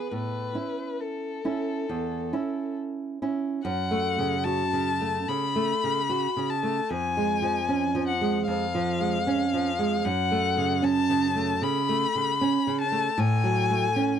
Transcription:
Already playing: B4
0.11 A2 B4
0.54 C#4 E4
1.00 A4
1.45 C#4 E4
1.89 E2
2.33 C#4 E4
3.22 C#4 E4
3.64 F#2 F#5
3.91 A3
4.18 C#3
4.44 F#4 A5
4.73 C#3
5.01 A3
5.28 C#3 B5
5.56 A3
5.84 C#3
6.10 F#4
6.36 C#3
6.50 A5
6.63 A3
6.90 F2 G#5
7.17 G#3
7.42 F3
7.69 C#4
7.95 F3
8.07 F#5
8.21 G#3
8.47 F2 F5
8.75 F3
9.00 G#3
9.27 C#4
9.54 F3
9.79 G#3
10.04 F#2 F#5
10.32 A3
10.57 C#3
10.82 C#4 A5
11.09 C#3
11.36 A3
11.62 C#3 B5
11.89 A3
12.15 C#3
12.41 C#4
12.67 C#3
12.81 A5
12.92 A3
13.18 A2 G#5
13.44 F#3
13.71 A3
13.96 C#4

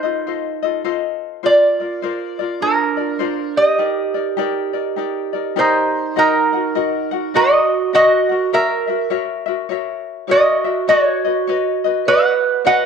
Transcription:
Already playing: D#4 C5
0.03 F4 A4 D#5
0.27 F4 A4 C5 D#5
0.62 F4 A4 D#5
0.84 F4 A4 C5 D#5
1.43 F4 A#4 C5 D5
1.80 F4 A#4 D5
2.02 F4 A#4 C5 D5
2.39 F4 A#4 D5
2.61 D4 F4 A#4 C5 D5
2.97 F4 A#4 D5
3.19 F4 A#4 C5 D5
3.57 G4 D#5
3.78 D#4 G4 A#4 D5
4.14 D#4 A#4 D5
4.37 D#4 G4 A#4 D5
4.73 D#4 A#4 D5
4.96 D#4 G4 A#4 D5
5.33 D#4 A#4 D5
5.56 D#4 G4 A#4 C5 D5
6.16 D#4 F#4 A#4 D#5 F#5
6.53 F#4 A#4 F#5
6.75 F#4 A#4 D#5 F#5
7.11 F#4 A#4 F#5
7.34 F#4 A#4 D#5 F#5
7.93 F#4 A#4 D#5 F#5
8.29 F#4 A#4 F#5
8.53 F#4 A#4 C#5 E5
8.88 F#4 A#4 E5
9.10 F#4 A#4 C#5 E5
9.46 F#4 A#4 E5
9.69 F#4 A#4 C#5 E5
10.27 F#4 A#4 C#5 D#5 E5
10.32 F#4
10.64 F#4 A#4 E5
10.87 F#4 B4 C#5 D#5
11.25 F#4 B4 D#5
11.47 F#4 B4 C#5 D#5
11.84 F#4 B4 D#5
12.06 F#4 B4 C#5 D#5 F#5
12.65 F#4 B4 C#5 D#5 F#5

